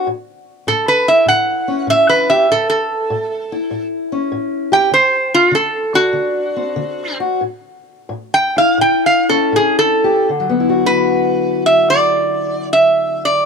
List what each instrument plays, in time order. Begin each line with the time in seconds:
0.07 steel-string acoustic guitar A2
0.67 steel-string acoustic guitar A2, resonator guitar played with a steel bar A4
0.88 resonator guitar played with a steel bar B4
1.08 steel-string acoustic guitar E4, resonator guitar played with a steel bar E5
1.26 steel-string acoustic guitar A2, resonator guitar played with a steel bar F#5
1.68 steel-string acoustic guitar C#4
1.87 steel-string acoustic guitar A2, resonator guitar played with a steel bar E5
2.09 resonator guitar played with a steel bar B4
2.30 steel-string acoustic guitar G4, resonator guitar played with a steel bar E5
2.50 steel-string acoustic guitar A2, resonator guitar played with a steel bar A4
2.70 resonator guitar played with a steel bar A4
3.10 steel-string acoustic guitar A2
3.52 steel-string acoustic guitar E4
3.71 steel-string acoustic guitar A2
4.12 steel-string acoustic guitar C#4
4.32 steel-string acoustic guitar A2
4.72 steel-string acoustic guitar G4, resonator guitar played with a steel bar G5
4.91 steel-string acoustic guitar D3, resonator guitar played with a steel bar C5
5.34 resonator guitar played with a steel bar F4
5.51 steel-string acoustic guitar D3, resonator guitar played with a steel bar A4
5.94 steel-string acoustic guitar D4, resonator guitar played with a steel bar F#4
6.13 steel-string acoustic guitar D3
6.57 steel-string acoustic guitar C4
6.76 steel-string acoustic guitar D3
7.20 steel-string acoustic guitar F#4
7.41 steel-string acoustic guitar A2
8.09 steel-string acoustic guitar A2
8.34 resonator guitar played with a steel bar G5
8.57 steel-string acoustic guitar E4, resonator guitar played with a steel bar F5
8.78 steel-string acoustic guitar A2, resonator guitar played with a steel bar G5
9.06 resonator guitar played with a steel bar F5
9.29 steel-string acoustic guitar C#4, resonator guitar played with a steel bar A4
9.52 steel-string acoustic guitar A2, resonator guitar played with a steel bar G#4
9.79 resonator guitar played with a steel bar A4
10.04 steel-string acoustic guitar G4
10.29 steel-string acoustic guitar D3
10.40 steel-string acoustic guitar F#3
10.49 steel-string acoustic guitar B3
10.60 steel-string acoustic guitar E4
10.69 steel-string acoustic guitar F#4
10.86 resonator guitar played with a steel bar B4
11.66 resonator guitar played with a steel bar E5
11.90 resonator guitar played with a steel bar D5
12.73 resonator guitar played with a steel bar E5
13.25 resonator guitar played with a steel bar D5